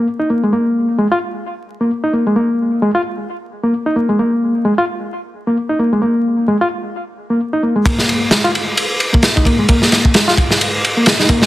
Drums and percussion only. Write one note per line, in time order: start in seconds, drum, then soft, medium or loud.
7.86 kick loud
7.86 ride medium
7.98 snare soft
8.09 ride medium
8.31 snare loud
8.31 ride medium
8.45 ride soft
8.55 ride medium
8.77 ride medium
9.00 ride medium
9.14 kick medium
9.23 snare loud
9.23 ride medium
9.37 kick medium
9.45 kick medium
9.45 ride medium
9.69 kick loud
9.69 ride medium
9.82 snare soft
9.92 snare soft
9.92 ride medium
10.05 kick medium
10.14 snare loud
10.14 ride medium
10.28 snare soft
10.38 kick medium
10.38 ride medium
10.51 snare soft
10.61 ride medium
10.84 ride medium
11.06 snare loud
11.06 ride medium
11.19 snare soft
11.29 kick medium
11.29 ride medium
11.42 snare soft